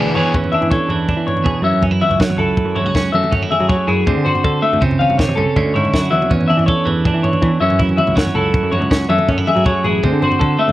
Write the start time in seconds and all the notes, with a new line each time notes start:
Already playing: E2 E3 B3 D4 G#4
0.00 B3 D4 G#4
0.14 E3 D4 G#4 C#5, floor tom
0.19 B3
0.34 E2 C#4, kick, floor tom
0.44 floor tom
0.52 D4 E5, mid tom
0.62 E3, floor tom
0.71 A4 C#5, kick
0.89 E2 E3, floor tom
1.09 D4, kick, floor tom
1.17 E3
1.27 C#5, floor tom
1.37 floor tom
1.44 E2 B2 G#4, kick
1.62 F#2 C#4 E5
1.74 floor tom
1.82 C#4, kick, floor tom
1.91 E4, floor tom
2.01 F#4 E5, mid tom
2.09 C#2, floor tom
2.20 F#3 C#5, kick, snare
2.30 floor tom, mid tom
2.37 C#2 E4 A4, floor tom
2.57 kick, floor tom
2.65 F#2
2.75 F#2 E4 C#5, floor tom
2.84 C#2 F#4, floor tom
2.95 C#4, kick, snare
3.12 F#2 A3 E5, mid tom
3.24 mid tom
3.31 F#2 C#4, kick, floor tom
3.42 E4, floor tom
3.51 G#4 E5, mid tom
3.60 F#3, floor tom
3.69 F#3 C#5, kick
3.87 F#2 E4 G#4, floor tom
4.07 D2 D3 C4, kick, floor tom
4.17 D3
4.25 F#4 C5, floor tom
4.35 floor tom
4.44 D3 A4, kick
4.62 A3 E5
4.73 D2, floor tom
4.81 C#2 C#3 C4, kick, floor tom
4.91 floor tom
4.99 C#4 F5, mid tom
5.09 G1, floor tom
5.18 C3 C#5, kick, snare
5.29 floor tom, mid tom
5.36 C2 C#3 A4, floor tom
5.56 D2 D3 C#4, kick, floor tom
5.65 D2
5.74 G#2 E4 C#5, floor tom
5.85 floor tom
5.94 F#2 F#4, kick, snare
6.11 E2 F#3 E5, mid tom
6.22 mid tom
6.30 E2 C#4, kick, floor tom
6.41 floor tom
6.48 D4 E5, mid tom
6.57 E3, floor tom
6.66 A4 C#5, kick
6.85 E2 E3, floor tom
7.05 D4, kick, floor tom
7.14 E3
7.23 C#5, floor tom
7.33 floor tom
7.42 E2 E3, kick
7.60 F#2 C#4 E5
7.70 floor tom
7.79 E4, kick, floor tom
7.89 floor tom
7.97 F#4 E5, mid tom
8.07 C#2, floor tom
8.16 F#3 C#5, kick, snare
8.26 floor tom, mid tom
8.34 C#2 E4 A4, floor tom
8.54 kick, floor tom
8.63 F#2
8.71 F#2 F#4 C#5, floor tom
8.82 C#2, floor tom
8.91 C#4, kick, snare
9.09 F#2 A3 E5, mid tom
9.18 mid tom
9.28 F#2 C#4, kick, floor tom
9.38 E4, floor tom
9.47 G#4 E5, mid tom
9.56 F#3, floor tom
9.66 F#3 C#5, kick
9.84 A1 E4 G#4, floor tom
10.03 D2 D3 C4, kick, floor tom
10.12 D3
10.22 F#4 C5, floor tom
10.32 floor tom
10.39 D3 A4, kick
10.59 A3 E5
10.68 D2, floor tom